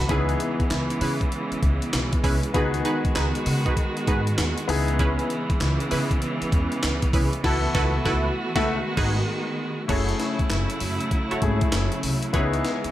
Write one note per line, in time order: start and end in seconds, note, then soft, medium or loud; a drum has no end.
0.00 4.65 B3 medium
0.00 0.11 C#4 medium
0.00 0.09 D#4 soft
0.00 0.10 E4 medium
0.00 0.12 F#4 medium
0.00 0.12 A4 medium
0.00 0.12 D#5 medium
0.00 0.12 E5 medium
0.00 0.11 F#5 medium
0.00 0.12 A5 medium
0.00 0.12 B5 medium
0.09 0.32 C#2 loud
0.09 2.52 C#3 medium
0.09 2.52 E3 medium
0.09 7.40 G#3 medium
0.09 2.50 B3 medium
0.09 0.38 C#4 loud
0.09 2.50 D#4 medium
0.09 0.38 E4 medium
0.09 2.51 E4 medium
0.09 0.39 G#4 medium
0.09 2.51 G#4 medium
0.09 0.39 B4 loud
0.09 kick loud
0.09 closed hi-hat medium
0.29 closed hi-hat soft
0.40 closed hi-hat medium
0.60 muted upright bass stroke soft
0.60 kick medium
0.60 closed hi-hat soft
0.71 0.85 C#2 loud
0.71 snare loud
0.71 clap medium
0.71 closed hi-hat medium
0.90 closed hi-hat medium
1.01 1.16 C#3 medium
1.01 1.18 C#4 medium
1.01 1.18 E4 medium
1.01 1.18 G#4 medium
1.01 1.18 B4 medium
1.01 open hi-hat medium
1.21 kick medium
1.21 closed hi-hat medium
1.32 closed hi-hat medium
1.52 muted upright bass stroke soft
1.52 closed hi-hat soft
1.63 1.77 C#2 medium
1.63 kick medium
1.63 closed hi-hat medium
1.82 closed hi-hat soft
1.93 2.08 B1 loud
1.93 snare loud
1.93 clap medium
1.93 closed hi-hat medium
2.13 kick medium
2.13 closed hi-hat medium
2.24 2.38 C2 medium
2.24 2.40 C#4 medium
2.24 2.40 E4 medium
2.24 2.40 G#4 medium
2.24 2.40 B4 medium
2.24 kick loud
2.24 open hi-hat medium
2.43 closed hi-hat medium
2.54 2.77 C#2 loud
2.54 4.67 D#3 medium
2.54 4.64 B3 medium
2.54 2.71 D#4 medium
2.54 4.65 D#4 medium
2.54 2.71 F#4 medium
2.54 4.67 F#4 medium
2.54 4.65 F#4 medium
2.54 2.71 G#4 medium
2.54 4.66 G#4 medium
2.54 2.71 B4 loud
2.54 kick loud
2.54 closed hi-hat medium
2.74 closed hi-hat soft
2.85 3.01 D#4 medium
2.85 3.01 F#4 medium
2.85 3.01 G#4 medium
2.85 3.01 B4 loud
2.85 closed hi-hat medium
3.05 muted upright bass stroke soft
3.05 kick loud
3.05 closed hi-hat soft
3.15 3.30 C#2 medium
3.15 3.32 D#4 medium
3.15 3.32 F#4 medium
3.15 3.32 G#4 medium
3.15 3.32 B4 medium
3.15 snare loud
3.15 clap medium
3.15 closed hi-hat medium
3.35 closed hi-hat medium
3.46 3.61 C#3 loud
3.46 open hi-hat medium
3.66 3.75 D#4 medium
3.66 3.75 F#4 medium
3.66 3.75 G#4 medium
3.66 3.75 B4 medium
3.66 kick medium
3.66 closed hi-hat soft
3.77 kick loud
3.77 closed hi-hat medium
3.97 closed hi-hat soft
4.07 4.30 G#2 medium
4.07 4.24 D#4 medium
4.07 4.24 F#4 medium
4.07 4.24 G#4 medium
4.07 4.24 B4 medium
4.07 kick medium
4.07 closed hi-hat medium
4.27 closed hi-hat medium
4.38 4.53 D#2 medium
4.38 snare loud
4.38 clap medium
4.38 closed hi-hat medium
4.58 closed hi-hat medium
4.68 5.14 C#2 loud
4.68 7.41 C#3 medium
4.68 7.41 E3 medium
4.68 7.09 B3 medium
4.68 9.85 B3 medium
4.68 7.09 D#4 medium
4.68 7.10 E4 medium
4.68 7.10 G#4 medium
4.68 open hi-hat medium
4.88 closed hi-hat medium
4.99 5.28 C#4 loud
4.99 5.28 E4 medium
4.99 5.28 G#4 medium
4.99 5.28 B4 loud
4.99 kick loud
4.99 closed hi-hat medium
5.19 closed hi-hat soft
5.30 closed hi-hat medium
5.50 muted upright bass stroke soft
5.50 kick loud
5.50 closed hi-hat soft
5.61 5.75 C#2 loud
5.61 snare loud
5.61 clap medium
5.61 closed hi-hat medium
5.80 closed hi-hat medium
5.91 6.06 C#3 loud
5.91 6.07 C#4 medium
5.91 6.07 E4 medium
5.91 6.07 G#4 medium
5.91 6.08 B4 medium
5.91 open hi-hat medium
6.11 kick medium
6.11 closed hi-hat medium
6.22 closed hi-hat medium
6.42 muted upright bass stroke soft
6.42 closed hi-hat soft
6.52 6.67 E2 medium
6.52 kick medium
6.52 closed hi-hat medium
6.72 closed hi-hat soft
6.83 6.98 C#2 medium
6.83 snare loud
6.83 clap medium
6.83 closed hi-hat medium
7.02 kick medium
7.02 closed hi-hat medium
7.13 7.28 C2 medium
7.13 7.30 C#4 medium
7.13 7.30 E4 medium
7.13 7.30 G#4 medium
7.13 7.30 B4 medium
7.13 kick loud
7.13 open hi-hat medium
7.33 closed hi-hat medium
7.44 7.67 C#2 loud
7.44 8.65 E3 medium
7.44 8.65 A3 medium
7.44 7.66 E4 medium
7.44 7.66 E4 loud
7.44 9.87 F#4 medium
7.44 7.66 F#4 loud
7.44 7.67 F#4 loud
7.44 7.67 A4 loud
7.44 7.67 B4 loud
7.44 kick loud
7.44 snare loud
7.44 crash medium
7.74 7.97 C#2 loud
7.74 7.97 E4 loud
7.74 7.97 F#4 loud
7.74 7.97 A4 loud
7.74 7.97 B4 loud
7.74 kick loud
7.74 snare loud
8.05 8.28 C#2 loud
8.05 8.28 E4 loud
8.05 8.28 F#4 loud
8.05 8.28 A4 loud
8.05 8.28 B4 loud
8.05 kick loud
8.05 snare loud
8.55 8.75 C#2 medium
8.55 8.75 A3 loud
8.55 8.75 E4 loud
8.55 8.75 F#4 loud
8.55 8.75 A4 loud
8.55 8.75 B4 loud
8.55 8.75 E5 loud
8.55 kick loud
8.55 snare loud
8.67 9.88 D#3 medium
8.67 9.88 G#3 medium
8.97 9.20 G#1 loud
8.97 9.19 D#4 loud
8.97 9.20 F#4 loud
8.97 9.20 G#4 loud
8.97 9.20 B4 loud
8.97 kick loud
8.97 snare loud
8.97 crash medium
9.88 10.12 F#1 loud
9.88 12.91 C#3 medium
9.88 12.32 F#3 medium
9.88 11.39 A3 medium
9.88 12.32 A3 medium
9.88 11.39 C#4 medium
9.88 10.18 E4 loud
9.88 12.32 E4 medium
9.88 11.39 E4 medium
9.88 10.18 F#4 medium
9.88 11.40 G#4 medium
9.88 10.18 A4 medium
9.88 10.18 C#5 loud
9.88 kick loud
9.88 closed hi-hat medium
9.88 crash medium
10.09 closed hi-hat soft
10.20 snare medium
10.20 closed hi-hat medium
10.39 muted upright bass stroke soft
10.39 kick medium
10.39 closed hi-hat soft
10.50 10.65 F#1 medium
10.50 snare loud
10.50 clap medium
10.50 closed hi-hat medium
10.70 closed hi-hat medium
10.80 10.96 F#2 loud
10.80 open hi-hat medium
11.01 closed hi-hat medium
11.11 kick medium
11.11 closed hi-hat medium
11.31 11.40 E4 medium
11.31 11.40 F#4 medium
11.31 11.40 A4 medium
11.31 11.40 C#5 medium
11.31 muted upright bass stroke soft
11.31 closed hi-hat soft
11.42 11.57 G#1 medium
11.42 12.34 A3 medium
11.42 12.34 C#4 medium
11.42 12.33 E4 soft
11.42 12.34 G#4 medium
11.42 kick medium
11.42 closed hi-hat medium
11.61 kick medium
11.61 closed hi-hat medium
11.72 11.87 F#1 medium
11.72 snare loud
11.72 clap medium
11.72 closed hi-hat medium
11.92 closed hi-hat medium
12.03 12.18 C2 medium
12.03 open hi-hat medium
12.23 closed hi-hat medium
12.33 12.57 C#2 loud
12.33 12.91 E3 medium
12.33 12.91 G#3 medium
12.33 12.91 B3 medium
12.33 12.91 D#4 medium
12.33 12.63 E4 medium
12.33 12.91 E4 medium
12.33 12.63 G#4 medium
12.33 12.91 G#4 medium
12.33 12.63 B4 medium
12.33 12.63 C#5 loud
12.33 kick loud
12.33 closed hi-hat medium
12.53 closed hi-hat soft
12.65 snare medium
12.65 closed hi-hat medium
12.84 muted upright bass stroke soft
12.84 closed hi-hat soft